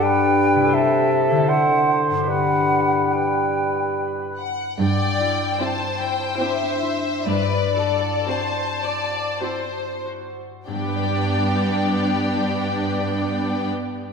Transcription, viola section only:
5.61 6.20 C4 soft
5.61 6.20 E4 soft
6.40 7.05 C4 soft
6.40 7.05 E4 soft
8.29 9.14 C4 soft
8.29 9.14 F#4 soft
9.41 10.41 C4 soft
9.41 10.41 F#4 soft
10.67 13.68 B3 soft
10.67 13.68 D4 soft

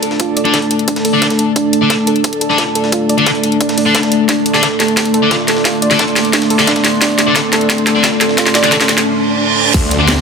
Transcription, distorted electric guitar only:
0.45 0.57 D4 medium
0.45 0.57 A4 medium
0.45 0.57 D5 medium
1.13 1.25 D4 medium
1.13 1.25 A4 medium
1.13 1.25 D5 loud
1.81 1.93 D4 medium
1.81 1.93 A4 medium
1.81 1.93 D5 medium
2.50 2.61 D4 medium
2.50 2.61 A4 medium
2.50 2.61 D5 loud
3.18 3.29 D4 medium
3.18 3.29 A4 medium
3.18 3.29 D5 medium
3.86 3.97 D4 medium
3.86 3.97 A4 medium
3.86 3.97 D5 loud
4.54 4.66 D4 medium
4.54 4.66 A4 medium
4.54 4.66 D5 medium
5.22 5.34 D4 medium
5.22 5.34 A4 medium
5.22 5.34 D5 loud
5.90 6.02 D4 medium
5.90 6.02 A4 medium
5.90 6.02 D5 medium
6.58 6.70 D4 medium
6.58 6.70 A4 medium
6.58 6.70 D5 loud
7.27 7.38 D4 medium
7.27 7.38 A4 medium
7.27 7.38 D5 medium
7.95 8.07 D4 medium
7.95 8.07 A4 medium
7.95 8.07 D5 loud
8.63 8.75 D4 medium
8.63 8.75 A4 medium
8.63 8.75 D5 medium
9.99 10.11 D4 medium
9.99 10.11 A4 medium
9.99 10.11 D5 medium

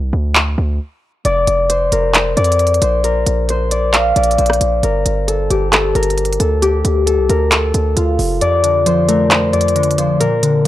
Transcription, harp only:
1.25 2.36 D5 medium
1.70 2.13 C5 medium
1.92 3.04 A#4 medium
2.14 2.81 C5 medium
2.37 3.71 D5 medium
2.82 3.50 C5 medium
3.04 4.84 A#4 loud
3.50 4.38 C5 medium
3.71 4.16 D5 medium
3.93 5.59 F5 loud
4.16 6.01 D5 medium
4.39 6.37 C5 medium
4.84 5.34 A#4 loud
5.28 5.72 A4 medium
5.50 6.62 G4 medium
5.72 6.01 A4 medium
5.95 6.46 A#4 medium
6.40 7.06 A4 medium
6.62 8.97 G4 loud
7.06 7.36 A4 medium
7.30 7.57 A#4 medium
7.51 9.15 A4 medium
7.97 10.49 F4 medium
8.41 9.53 D5 medium
8.86 9.30 C5 medium
9.09 10.20 A#4 medium
9.30 9.98 C5 medium
9.53 10.68 D5 medium
9.98 10.66 C5 medium
10.20 10.68 A#4 loud

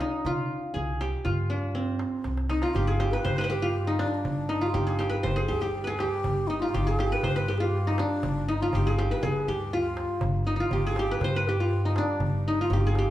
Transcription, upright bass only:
0.25 0.44 C3 medium
0.75 1.13 C2 medium
1.26 2.02 G2 medium
2.25 2.63 C2 medium
2.75 3.13 G1 medium
3.25 4.01 G2 medium
4.25 4.63 G1 medium
4.75 5.13 G1 loud
5.25 5.44 G1 medium
5.50 6.07 D2 medium
6.25 6.62 G1 medium
6.75 7.12 G1 medium
7.23 8.00 G2 medium
8.23 8.61 G1 medium
8.74 9.12 G1 medium
9.23 9.42 G1 medium
9.48 10.05 D2 medium
10.23 10.60 G1 medium
10.71 11.09 G1 medium
11.21 11.97 G2 medium
12.20 12.59 G1 medium
12.70 13.08 G1 loud

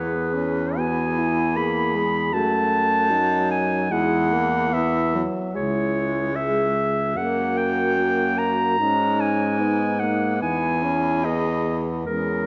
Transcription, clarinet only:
0.00 0.79 B4 medium
0.77 1.58 G#5 medium
1.56 2.35 B5 medium
2.33 3.50 A5 medium
3.51 3.93 G#5 medium
3.91 4.75 F#5 medium
4.73 5.27 E5 medium
5.55 6.37 C#5 medium
6.36 7.18 E5 medium
7.16 7.59 F#5 medium
7.57 8.40 G5 medium
8.38 9.22 A#5 medium
9.20 10.01 G#5 medium
10.00 10.41 F#5 medium
10.42 11.26 G#5 medium
11.25 11.79 D#5 medium
12.06 12.46 A#4 medium

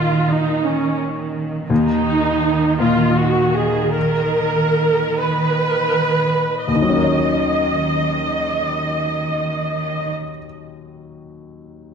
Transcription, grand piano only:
0.00 1.71 A#2 soft
1.70 3.91 D#2 soft
2.80 6.68 A#2 soft
6.68 10.09 D#2 soft
6.75 10.16 D#3 soft
6.82 10.23 F#3 soft
6.89 10.30 C#4 soft
6.96 10.37 A#4 soft
7.03 10.44 C#5 soft

